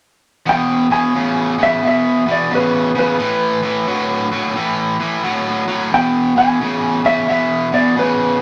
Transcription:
0.46 0.86 E2 medium
0.46 0.86 B2 medium
0.46 0.92 G5 medium
0.90 1.12 E2 medium
0.90 1.12 B2 medium
0.90 1.61 G#5 medium
1.14 1.54 E2 medium
1.14 1.54 C#3 medium
1.58 1.80 E2 medium
1.58 1.80 C#3 medium
1.63 1.85 E5 loud
1.82 2.22 E2 medium
1.82 2.22 B2 medium
1.88 2.30 E5 loud
2.26 2.48 E2 medium
2.26 2.48 B2 medium
2.31 2.52 D5 medium
2.50 2.90 E2 medium
2.50 2.90 C#3 medium
2.55 2.98 B4 medium
2.95 3.17 E2 medium
2.95 3.17 C#3 medium
2.99 4.30 B4 medium
3.19 3.59 A2 medium
3.19 3.59 E3 medium
3.63 3.85 A2 medium
3.63 3.85 E3 medium
3.87 4.27 A2 medium
3.87 4.27 F#3 medium
4.31 4.53 A2 medium
4.31 4.53 F#3 medium
4.56 4.95 A2 medium
4.56 4.95 E3 medium
5.00 5.21 A2 medium
5.00 5.22 E3 medium
5.23 5.63 A2 medium
5.23 5.63 F#3 medium
5.68 5.89 A2 medium
5.68 5.90 F#3 medium
5.92 6.32 E2 medium
5.92 6.32 B2 medium
5.92 6.34 G5 loud
6.36 6.58 E2 medium
6.36 6.58 B2 medium
6.36 7.05 G#5 medium
6.60 7.00 E2 medium
6.60 7.00 C#3 medium
7.04 7.26 E2 medium
7.04 7.26 C#3 medium
7.04 7.29 E5 medium
7.28 7.68 E2 medium
7.28 7.68 B2 medium
7.28 7.75 E5 medium
7.72 7.94 E2 medium
7.72 7.94 B2 medium
7.72 7.98 D5 medium
7.96 8.36 E2 medium
7.96 8.36 C#3 loud
7.96 8.42 B4 medium

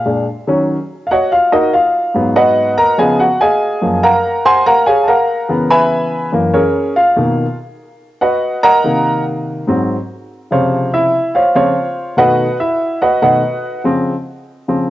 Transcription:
0.00 0.24 F5 medium
0.05 0.24 A#2 soft
0.05 0.25 G#3 soft
0.05 0.25 D4 medium
0.47 0.75 D#3 medium
0.47 0.76 F#3 medium
0.47 0.76 C#4 medium
1.07 1.09 F5 medium
1.11 1.31 F#4 medium
1.11 1.31 C#5 medium
1.11 1.31 D#5 medium
1.11 1.31 F#5 medium
1.32 1.52 F4 medium
1.32 1.52 F5 medium
1.52 1.73 D#4 medium
1.52 1.73 F#4 medium
1.52 1.73 A#4 medium
1.52 1.73 D#5 medium
1.73 2.32 F4 medium
1.73 2.32 F5 medium
2.14 2.74 G#2 medium
2.14 2.75 F#3 medium
2.14 2.75 B3 medium
2.36 2.95 F#4 medium
2.36 2.95 B4 medium
2.36 2.95 D#5 medium
2.36 2.95 F#5 medium
2.78 2.98 A#4 medium
2.78 2.98 A#5 loud
2.98 3.26 C#3 medium
2.98 3.26 F3 medium
2.98 3.27 B3 medium
2.98 3.19 G#4 medium
2.98 3.19 D#5 medium
2.98 3.19 F5 medium
2.98 3.19 G#5 medium
3.20 3.40 F#4 medium
3.20 3.40 F#5 medium
3.41 4.00 G#4 medium
3.41 4.00 D#5 medium
3.41 4.00 F5 medium
3.41 3.99 G#5 medium
3.82 4.10 F#2 medium
3.82 4.10 F3 soft
3.82 4.10 A#3 medium
4.03 4.62 A#4 medium
4.03 4.62 F5 medium
4.03 4.44 F#5 medium
4.03 4.62 A#5 medium
4.46 4.66 C5 medium
4.46 4.65 F#5 medium
4.46 4.66 G#5 medium
4.46 4.66 C6 loud
4.66 4.87 A#4 medium
4.66 4.85 F5 medium
4.66 4.87 F#5 medium
4.66 4.86 A#5 medium
4.86 5.07 G#4 medium
4.86 5.07 C#5 medium
4.86 5.07 F5 medium
4.86 5.07 G#5 medium
5.03 5.06 A5 medium
5.08 5.67 A#4 medium
5.08 5.47 F5 medium
5.08 5.67 F#5 medium
5.08 5.67 A#5 medium
5.49 6.29 C#3 medium
5.49 6.29 E3 soft
5.49 6.29 B3 medium
5.70 6.29 B4 medium
5.70 6.29 E5 medium
5.70 6.29 G#5 medium
5.70 6.29 B5 loud
6.32 6.60 F#2 medium
6.32 6.61 E3 medium
6.32 6.61 A#3 medium
6.54 6.93 C#4 medium
6.54 6.93 G#4 medium
6.54 6.93 A#4 medium
6.54 6.93 C#5 medium
6.96 7.55 F4 medium
6.96 7.55 F5 medium
7.16 7.44 B2 medium
7.16 7.45 D#3 medium
7.16 7.45 A#3 medium
8.21 8.60 F#4 medium
8.21 8.60 B4 medium
8.21 8.60 D#5 medium
8.21 8.60 F#5 medium
8.63 9.22 A#4 medium
8.63 9.22 D#5 medium
8.63 9.22 F#5 medium
8.63 9.22 A#5 loud
8.84 9.63 C3 medium
8.84 9.64 D#3 medium
8.84 9.64 A#3 medium
9.67 9.95 G#2 medium
9.67 9.95 F#3 medium
9.67 9.96 C4 medium
10.51 11.11 C3 medium
10.51 11.10 C#3 medium
10.51 11.11 F3 soft
10.51 10.90 F4 medium
10.51 10.90 C5 medium
10.51 10.90 C#5 medium
10.51 10.90 F5 medium
10.94 11.32 E4 medium
10.94 11.32 E5 medium
11.35 11.54 F4 medium
11.35 11.54 C5 medium
11.35 11.54 C#5 medium
11.35 11.54 F5 medium
11.55 11.74 C#3 soft
11.55 11.74 F3 soft
11.55 11.74 C4 medium
11.55 12.14 F4 medium
11.55 12.14 C5 medium
11.55 12.14 C#5 medium
11.55 12.14 F5 medium
12.17 12.45 B2 medium
12.17 12.46 D#3 soft
12.17 12.46 A3 medium
12.17 12.57 F#4 medium
12.17 12.57 B4 medium
12.17 12.57 D#5 medium
12.17 12.57 F#5 medium
12.60 12.99 E4 medium
12.60 12.99 E5 medium
13.02 13.21 F#4 medium
13.02 13.21 B4 medium
13.02 13.21 D#5 medium
13.02 13.21 F#5 medium
13.22 13.41 B2 soft
13.22 13.41 D#3 soft
13.22 13.41 A3 soft
13.22 13.81 F#4 medium
13.22 13.81 B4 medium
13.22 13.81 D#5 medium
13.22 13.81 F#5 medium
13.84 14.12 C#3 medium
13.84 14.12 F3 medium
13.84 14.13 C4 medium
14.68 14.87 C#3 soft
14.68 14.87 F3 soft
14.68 14.87 C4 medium

